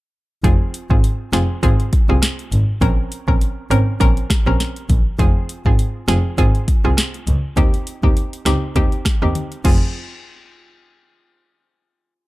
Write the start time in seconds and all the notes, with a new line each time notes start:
0.44 F1 C4 F4 G#4, kick, closed hi-hat
0.74 closed hi-hat
0.90 G#1 C4 F4 G#4, kick
1.04 closed hi-hat
1.33 F1 C4 F4 G#4, cross-stick, snare, closed hi-hat
1.63 G#1 C4 F4 G#4, kick, closed hi-hat
1.80 closed hi-hat
1.93 kick, closed hi-hat
2.09 C2 C4 F4 G#4, cross-stick
2.22 cross-stick, snare, closed hi-hat
2.39 closed hi-hat
2.52 G#1, closed hi-hat
2.81 A#1 C4 C#4 A#4, kick, closed hi-hat
3.12 closed hi-hat
3.28 A#1 C4 C#4 A#4, kick
3.41 closed hi-hat
3.70 G#1 C4 C#4 A#4, closed hi-hat
4.00 A#1 C4 C#4 A#4, kick, closed hi-hat
4.17 closed hi-hat
4.30 kick, cross-stick, snare, closed hi-hat
4.46 A#1 C4 C#4 A#4, cross-stick
4.60 snare, closed hi-hat
4.76 closed hi-hat
4.89 A#1, kick, closed hi-hat
5.19 F1 C4 F4 G#4, kick, closed hi-hat
5.49 closed hi-hat
5.66 G#1 C4 F4 G#4, kick
5.79 closed hi-hat
6.08 F1 C4 F4 G#4, cross-stick, snare, closed hi-hat
6.38 G#1 C4 F4 G#4, kick, closed hi-hat
6.55 closed hi-hat
6.68 kick, closed hi-hat
6.84 C2 C4 F4 G#4, cross-stick
6.97 cross-stick, snare, closed hi-hat
7.14 closed hi-hat
7.27 C#2, closed hi-hat
7.57 D#2 C4 D#4 G4, kick, closed hi-hat
7.74 closed hi-hat
7.87 closed hi-hat
8.03 D#2 C4 D#4 G4, kick
8.17 closed hi-hat
8.33 closed hi-hat
8.45 C#2 C4 D#4 G4, cross-stick, snare, closed hi-hat
8.76 D#2 C4 D#4 G4, kick, closed hi-hat
8.92 closed hi-hat
9.05 kick, cross-stick, snare, closed hi-hat
9.22 D#2 C4 D#4 G4, cross-stick
9.35 closed hi-hat, high tom
9.52 closed hi-hat
9.64 F1 C4 F4 G#4, kick, crash